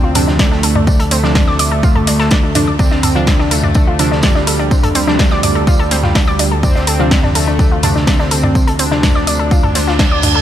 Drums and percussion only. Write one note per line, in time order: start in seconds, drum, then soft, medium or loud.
0.15 mid tom medium
0.15 open hi-hat loud
0.15 tambourine medium
0.27 snare medium
0.39 kick loud
0.39 snare loud
0.39 tambourine medium
0.52 snare medium
0.63 open hi-hat medium
0.63 tambourine medium
0.75 mid tom medium
0.87 kick loud
0.87 tambourine medium
1.00 closed hi-hat soft
1.11 open hi-hat loud
1.11 tambourine medium
1.24 snare medium
1.35 kick loud
1.35 snare loud
1.35 mid tom medium
1.35 tambourine medium
1.47 snare soft
1.59 open hi-hat loud
1.59 tambourine medium
1.83 kick loud
1.83 tambourine medium
1.95 mid tom medium
2.07 snare medium
2.07 open hi-hat loud
2.07 tambourine medium
2.19 snare medium
2.31 kick loud
2.31 snare loud
2.31 tambourine medium
2.55 mid tom medium
2.55 open hi-hat loud
2.55 tambourine medium
2.79 kick loud
2.79 tambourine loud
2.91 snare soft
3.03 mid tom medium
3.03 open hi-hat loud
3.03 tambourine medium
3.27 kick loud
3.27 snare loud
3.27 tambourine medium
3.40 snare medium
3.51 open hi-hat medium
3.51 tambourine medium
3.63 mid tom medium
3.74 kick loud
3.74 tambourine medium
3.99 open hi-hat loud
3.99 tambourine medium
4.12 snare medium
4.23 kick loud
4.23 snare loud
4.23 mid tom medium
4.23 tambourine medium
4.35 snare medium
4.47 open hi-hat medium
4.47 tambourine medium
4.71 kick loud
4.71 tambourine medium
4.83 closed hi-hat soft
4.83 mid tom medium
4.95 open hi-hat loud
4.95 tambourine medium
5.08 snare medium
5.19 kick loud
5.19 snare loud
5.19 tambourine medium
5.31 snare soft
5.43 mid tom medium
5.43 open hi-hat medium
5.43 tambourine medium
5.67 kick loud
5.67 tambourine medium
5.91 snare medium
5.91 open hi-hat loud
5.91 tambourine medium
6.03 snare soft
6.03 mid tom medium
6.15 kick loud
6.15 snare loud
6.15 tambourine medium
6.39 open hi-hat medium
6.39 tambourine medium
6.63 kick loud
6.63 mid tom medium
6.63 tambourine medium
6.76 snare soft
6.87 open hi-hat loud
6.87 tambourine medium
7.11 kick loud
7.11 snare loud
7.11 tambourine medium
7.23 snare soft
7.23 mid tom medium
7.35 open hi-hat medium
7.35 tambourine medium
7.59 kick loud
7.59 tambourine medium
7.83 mid tom medium
7.83 open hi-hat loud
7.83 tambourine medium
7.96 snare medium
8.07 kick loud
8.07 snare loud
8.07 tambourine medium
8.20 snare medium
8.31 open hi-hat medium
8.31 tambourine medium
8.43 mid tom loud
8.55 kick loud
8.55 tambourine medium
8.67 closed hi-hat soft
8.79 open hi-hat loud
8.79 tambourine medium
8.91 snare medium
9.03 kick loud
9.03 snare loud
9.03 mid tom loud
9.03 tambourine medium
9.15 snare soft
9.27 open hi-hat medium
9.27 tambourine medium
9.51 kick loud
9.51 tambourine medium
9.63 mid tom medium
9.75 snare medium
9.75 open hi-hat loud
9.75 tambourine medium
9.88 snare medium
9.99 kick loud
9.99 snare loud
9.99 tambourine medium
10.22 mid tom loud
10.22 open hi-hat medium
10.22 tambourine medium